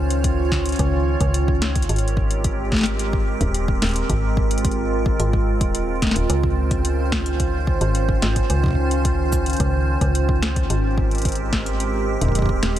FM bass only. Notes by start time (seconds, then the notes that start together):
Already playing: C#2
0.79 C#2
1.21 C#2
1.89 G#1
3.41 D#1
3.82 D#1
4.09 G#1
5.20 G#1
5.61 D#1
6.16 D#1
6.30 C#2
7.81 G#1
8.22 G#1
8.50 C#2
9.60 C#2
10.01 C#2
10.70 G#1
12.21 D#1
12.63 D#1